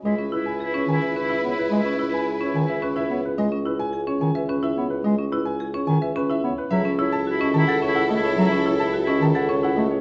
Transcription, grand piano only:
X:1
M:3/4
L:1/16
Q:1/4=108
K:C#m
V:1 name="Grand piano"
d z B g z c g e B e c B | d z B g z c g e B e c B | d z B g z c g e B e c B | d z B g z c g e B e c B |
e z c a z d a f c f d c | e z c a z d a f c f d c |]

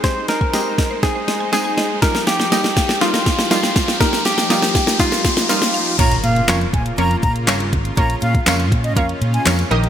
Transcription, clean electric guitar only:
X:1
M:4/4
L:1/8
Q:1/4=121
K:Bbdor
V:1 name="Clean electric guitar"
c B3 A2 A2 | B G3 F2 F2 | B G3 F2 F2 | z8 |
z8 |]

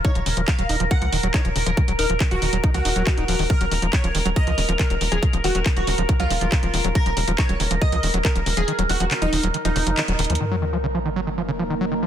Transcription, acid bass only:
X:1
M:4/4
L:1/16
Q:1/4=139
K:Ebm
V:1 name="Acid bass" clef=bass
E F, D, F, E, G, E F, D, F, E, G, E F, D, F, | E, G, E F, D, F, E, G, E F, E G, E, E F, E, | E, G, E, F, D, F, E, G, E, F, D, F, E, G, E, F, | D, F, E, G, E, F, D, F, E, G, E, F, D, F, E, G, |
E, F, D, F, E, G, E, F, D, F, E, G, E, F, D, F, | E, G, E, F, D, F, E, G, E, F, D, F, E, G, E, F, | E, G, E, F, D, F, E, G, E, F, D, F, E, G, E, F, |]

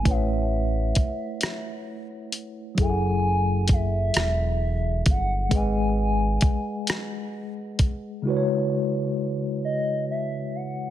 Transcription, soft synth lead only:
X:1
M:6/8
L:1/8
Q:3/8=44
K:C#m
V:1 name="Soft synth lead"
e4- e z | g2 e3 f | g3 z3 | z3 d e f |]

